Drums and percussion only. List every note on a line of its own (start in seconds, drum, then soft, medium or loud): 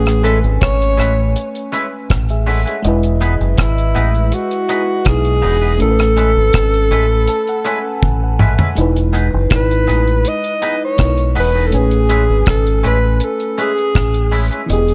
0.06 cross-stick medium
0.06 closed hi-hat soft
0.25 closed hi-hat medium
0.44 closed hi-hat soft
0.61 kick loud
0.61 cross-stick loud
0.61 closed hi-hat medium
0.82 closed hi-hat soft
1.00 cross-stick medium
1.00 closed hi-hat medium
1.36 closed hi-hat medium
1.55 closed hi-hat medium
1.74 closed hi-hat medium
2.10 kick loud
2.10 cross-stick loud
2.10 closed hi-hat medium
2.29 closed hi-hat soft
2.48 open hi-hat medium
2.67 closed hi-hat soft
2.84 closed hi-hat medium
3.03 closed hi-hat medium
3.22 closed hi-hat medium
3.41 closed hi-hat soft
3.58 kick loud
3.58 cross-stick loud
3.58 closed hi-hat medium
3.78 closed hi-hat soft
3.96 closed hi-hat medium
4.14 closed hi-hat soft
4.32 closed hi-hat medium
4.51 closed hi-hat medium
4.69 closed hi-hat medium
5.05 kick loud
5.05 cross-stick loud
5.05 closed hi-hat medium
5.25 closed hi-hat soft
5.44 open hi-hat medium
5.80 closed hi-hat medium
5.99 cross-stick medium
5.99 closed hi-hat soft
6.17 closed hi-hat medium
6.53 kick loud
6.53 cross-stick loud
6.53 closed hi-hat medium
6.74 closed hi-hat soft
6.92 closed hi-hat medium
7.27 closed hi-hat medium
7.47 closed hi-hat soft
7.65 closed hi-hat medium
8.03 kick loud
8.03 high tom medium
8.39 mid tom medium
8.59 floor tom medium
8.77 closed hi-hat medium
8.96 closed hi-hat medium
9.15 closed hi-hat medium
9.50 kick loud
9.50 cross-stick loud
9.50 closed hi-hat medium
9.71 closed hi-hat soft
9.89 closed hi-hat medium
10.08 closed hi-hat soft
10.25 closed hi-hat medium
10.44 closed hi-hat medium
10.62 closed hi-hat medium
10.98 kick loud
10.98 cross-stick loud
10.98 closed hi-hat medium
11.17 closed hi-hat soft
11.36 open hi-hat medium
11.72 closed hi-hat medium
11.91 closed hi-hat soft
12.10 closed hi-hat medium
12.46 kick loud
12.46 cross-stick loud
12.46 closed hi-hat medium
12.67 closed hi-hat soft
12.85 closed hi-hat medium
13.20 closed hi-hat medium
13.40 closed hi-hat medium
13.59 closed hi-hat medium
13.78 closed hi-hat soft
13.95 kick loud
13.95 cross-stick loud
13.95 closed hi-hat medium
14.14 closed hi-hat soft
14.33 open hi-hat medium
14.52 closed hi-hat soft
14.70 closed hi-hat medium
14.88 closed hi-hat medium